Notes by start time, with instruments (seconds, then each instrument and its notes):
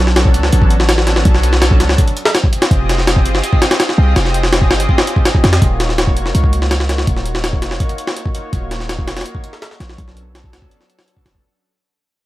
Already playing: 808-style bass B1
0.07 analog synth pad F#3 B3 C#4 D4 A4, snare
0.16 snare, closed hi-hat
0.25 kick
0.34 808-style bass C#2, closed hi-hat
0.43 snare
0.53 808-style bass A1, closed hi-hat
0.62 kick
0.70 closed hi-hat
0.80 snare
0.89 snare, closed hi-hat
0.98 snare
1.07 analog synth pad F#3 B3 C#4 D4 A4, snare, closed hi-hat
1.16 snare
1.25 808-style bass B1, analog synth pad F#3 B3 C#4 D4 A4, kick, closed hi-hat
1.34 snare
1.43 closed hi-hat
1.53 analog synth pad F#3 B3 C#4 D4 A4, snare
1.62 snare, closed hi-hat
1.71 kick
1.80 808-style bass C#2, snare, closed hi-hat
1.89 snare
1.98 kick, closed hi-hat
2.08 closed hi-hat
2.17 closed hi-hat
2.25 snare
2.35 snare, closed hi-hat
2.44 kick
2.53 analog synth pad C4 F4 G4 G#4 D#5, closed hi-hat
2.62 snare, closed hi-hat
2.71 808-style bass F1, analog synth pad C4 F4 G4 G#4 D#5, kick, closed hi-hat
2.89 snare, closed hi-hat
2.98 analog synth pad C4 F4 G4 G#4 D#5, snare
3.07 snare, closed hi-hat
3.16 kick
3.25 808-style bass G1, closed hi-hat
3.35 snare
3.44 closed hi-hat
3.53 kick
3.62 snare, closed hi-hat
3.71 snare, closed hi-hat
3.80 snare, closed hi-hat
3.89 snare
3.98 808-style bass C2, analog synth pad C4 F4 G4 G#4 D#5
4.16 808-style bass F1, analog synth pad C4 F4 G4 G#4 D#5, snare, closed hi-hat
4.25 snare
4.34 closed hi-hat
4.43 analog synth pad C4 F4 G4 G#4 D#5, snare
4.53 snare, closed hi-hat
4.62 kick
4.71 808-style bass G1, snare
4.80 closed hi-hat
4.89 kick
4.98 snare
5.07 closed hi-hat
5.16 kick
5.25 snare, closed hi-hat
5.34 kick
5.43 808-style bass F2, analog synth pad C4 F4 G4 G#4 D#5, snare, closed hi-hat
5.53 snare, closed hi-hat
5.61 808-style bass D#1, analog synth pad A#3 D#4 F4 F#4 C#5, kick, closed hi-hat
5.80 snare, closed hi-hat
5.89 analog synth pad A#3 D#4 F4 F#4 C#5, snare
5.98 snare, closed hi-hat
6.07 kick
6.17 808-style bass F1, closed hi-hat
6.26 snare
6.35 808-style bass C#2, closed hi-hat
6.44 kick
6.53 closed hi-hat
6.62 snare
6.71 snare, closed hi-hat
6.80 snare
6.89 analog synth pad A#3 D#4 F4 F#4 C#5, snare, closed hi-hat
6.98 snare
7.07 808-style bass D#1, analog synth pad A#3 D#4 F4 F#4 C#5, kick, closed hi-hat
7.16 snare
7.25 closed hi-hat
7.34 analog synth pad A#3 D#4 F4 F#4 C#5, snare
7.44 snare, closed hi-hat
7.53 kick
7.62 808-style bass F1, snare, closed hi-hat
7.71 snare
7.80 kick, closed hi-hat
7.89 closed hi-hat
7.98 closed hi-hat
8.07 snare
8.17 closed hi-hat
8.26 kick
8.35 analog synth pad A#3 D#4 F4 F#4 C#5, closed hi-hat
8.53 808-style bass D#1, analog synth pad A#3 D#4 F4 F#4 C#5, kick, closed hi-hat
8.71 snare, closed hi-hat
8.80 analog synth pad A#3 D#4 F4 F#4 C#5, snare
8.89 snare, closed hi-hat
8.98 kick
9.07 808-style bass F1, snare, closed hi-hat
9.17 snare, closed hi-hat
9.21 snare, closed hi-hat
9.26 closed hi-hat
9.35 kick
9.44 closed hi-hat
9.53 snare
9.62 snare, closed hi-hat
9.71 snare
9.80 808-style bass A#1, analog synth pad A#3 D#4 F4 F#4 C#5, snare, closed hi-hat
9.89 snare
9.98 808-style bass B1, analog synth pad F#3 B3 C#4 D4 A4, kick, closed hi-hat
10.08 snare
10.17 closed hi-hat
10.26 analog synth pad F#3 B3 C#4 D4 A4
10.35 snare, closed hi-hat
10.44 kick
10.53 808-style bass C#2, snare, closed hi-hat
10.62 kick
10.71 closed hi-hat
10.81 snare
10.90 closed hi-hat
10.99 snare
11.08 closed hi-hat
11.17 analog synth pad F#3 B3 C#4 D4 A4, kick
11.26 808-style bass F#1, analog synth pad F#3 B3 C#4 D4 A4, snare, closed hi-hat
11.35 kick